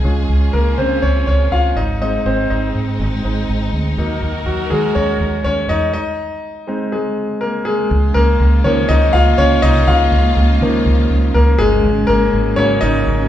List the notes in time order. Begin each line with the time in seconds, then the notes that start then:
Already playing: G#4
0.04 C#2 C#3 G#3 C#4 F4
0.29 C#2
0.53 C#2 A#3 A#4
0.78 C#3 C4 C5
1.02 C#2 C#4 C#5
1.27 C#2 C#4 C#5
1.51 C#2 F4 F5
1.76 G#1 G#3 C4 D#4 D#5
2.01 G#3 C4 D#4 D#5
2.25 G#1 C4 C5
2.50 G#1 D#4 D#5
2.75 G#2
2.99 G#1
3.24 G#1 G#3 C4 D#4
3.49 G#1
3.73 D2
3.97 D#2 D#3 F#3 A#3 D#4 F#4 A#4
4.22 D#2
4.46 D#2 F#3 F#4
4.70 D#3 G#3 G#4
4.95 D#2 C#4 C#5
5.20 D#2
5.44 D#2 C#4 C#5
5.69 E2 D#4 D#5
5.93 D#4 D#5
6.67 G#3 C4 D#4
6.92 G#3 G#4
7.41 A#3 A#4
7.65 G#3 G#4
7.90 C#2 C#3 G#3 A#3 F4
8.14 C#2 A#3 A#4
8.40 C#2
8.64 C#3 D#3 F3 A#3 C#4 C#5
8.89 C#2 D#4 D#5
9.13 C#2 F4 F5
9.38 C#2 C#4 C#5
9.62 C2 D#4 D#5
9.87 C#2 F4 F5
10.12 C#2
10.37 C#2
10.61 C#3 D#3 F3 A#3
10.86 C#2
11.10 C#2
11.34 C#2 A#3 A#4
11.59 G1 G#3 G#4
11.84 G#1 F#3
12.07 G#1 A#3 A#4
12.33 G#1
12.56 G#2 C#3 F#3 A#3 C#4 C#5
12.81 G#1 D#4 D#5
13.07 G#1